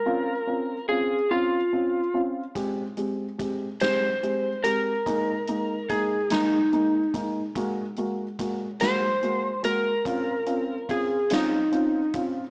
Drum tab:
HH |------|xxxxxx|xxxxxx|xxxxxx|
SD |------|---o--|---o--|---o--|
BD |------|o-o---|o-o--o|o-o---|

HH |xxxxxx|
SD |---o--|
BD |o-o--o|